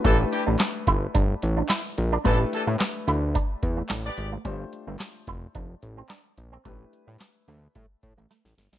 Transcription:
<<
  \new Staff \with { instrumentName = "Grand piano" } { \time 4/4 \key a \minor \tempo 4 = 109 <a d' e' g' b'>1 | <a d' e' g' b'>1 | <a d' f' g' c''>1 | <a d' e' g' b'>1 | }
  \new Staff \with { instrumentName = "Horn section" } { \time 4/4 \key a \minor <e d' a'>16 r16 <e d' g'>16 r2. r16 | <e d' a'>16 r16 <e d' a'>16 r2 r8 <b g' d''>8 r16 | r1 | r1 | }
  \new Staff \with { instrumentName = "Clean electric guitar" } { \time 4/4 \key a \minor a16 r8 d'16 r8 e'16 r16 d'16 r8 d'16 e'16 r8 d'16 | a16 r8 a16 r8 e'16 r16 d'16 r8 a16 d'16 r8 a16 | g16 r8 a16 r8 e'16 r16 d'16 r8 c'16 d'16 r8 c'16 | a16 r8 g16 r8 a16 r16 g16 r8 a16 a16 r8 g16 | }
  \new Staff \with { instrumentName = "Analog synth bass" } { \clef bass \time 4/4 \key a \minor a,,8 r16 a,,16 r8 g,,8 g,,8 a,,8 r8 bes,,8 | a,,8 r16 a,16 r8 d,8. r16 e,8 a,,8 gis,,8 | g,,8 r16 g,,16 r8 f,,8 f,,8 a,,8 r8 bes,,8 | a,,8 r16 a,16 r8 d,8 a,16 r16 a,16 a,,16 r16 a,,16 g,,16 bes,,16 | }
  \new DrumStaff \with { instrumentName = "Drums" } \drummode { \time 4/4 <hh bd>8 hh8 <hc hh sn>8 <hh bd>8 <hh bd>8 hh8 <hc hh sn>8 hh8 | <hh bd>8 hh8 <hc hh sn>8 hh8 <hh bd>8 <hh bd>8 <hc hh sn>8 hh8 | <hh bd>8 hh8 <hc hh sn>8 <hh bd>8 <hh bd>8 hh8 <hc hh sn>8 hh8 | <hh bd>8 hh8 <hc hh sn>8 hho8 <hh bd>8 <hh bd>16 hh16 <hh sn>16 sn16 <hho sn>16 <hh sn>16 | }
>>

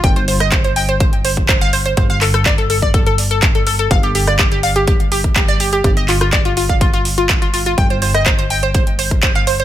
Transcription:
<<
  \new Staff \with { instrumentName = "Synth arpeggio sound" } { \time 4/4 \key c \dorian \tempo 4 = 124 g''16 c''16 c''16 ees''16 c''16 c''16 g''16 c''16 c''16 r16 c''16 r16 c''16 f''16 c''16 c''16 | c''16 f''16 a'16 a'16 d''16 a'16 a'16 d''16 a'16 a'16 r16 a'16 r16 a'16 a'16 a'16 | f''16 g'16 g'16 d''16 g'16 g'16 f''16 g'16 g'16 r16 g'16 r16 g'16 d''16 g'16 g'16 | g'16 ees''16 f'16 f'16 d''16 f'16 f'16 f''16 f'16 f'16 r16 f'16 r16 f'16 f'16 f'16 |
g''16 c''16 c''16 ees''16 c''16 c''16 g''16 c''16 c''16 r16 c''16 r16 c''16 f''16 c''16 c''16 | }
  \new Staff \with { instrumentName = "Analog synth bass" } { \clef bass \time 4/4 \key c \dorian g,,1 | g,,1 | g,,1 | g,,1 |
g,,1 | }
  \new DrumStaff \with { instrumentName = "Drums" } \drummode { \time 4/4 <hh bd>16 hh16 hho16 <hh ss>16 <hc hh bd>16 hh16 hho16 hh16 <hh bd>16 hh16 hho16 <hh bd>16 <hc hh bd>16 hh16 hho16 hh16 | <hh bd>16 hh16 <hc hho>16 <hh ss>16 <hc hh bd>16 hh16 hho16 <hh bd>16 <hh bd>16 hh16 hho16 hh16 <hc hh bd>16 hh16 hho16 hh16 | <hh bd>16 hh16 hho16 <hh ss>16 <hc hh bd>16 hh16 hho16 hh16 <hh bd>16 hh16 hho16 <hh bd>16 <hc hh bd>16 hh16 hho16 hh16 | <hh bd>16 hh16 <hc hho>16 <hh ss>16 <hc hh bd>16 hh16 hho16 <hh bd>16 <hh bd>16 hh16 hho16 hh16 <hc hh bd>16 hh16 hho16 hh16 |
<hh bd>16 hh16 hho16 <hh ss>16 <hc hh bd>16 hh16 hho16 hh16 <hh bd>16 hh16 hho16 <hh bd>16 <hc hh bd>16 hh16 hho16 hh16 | }
>>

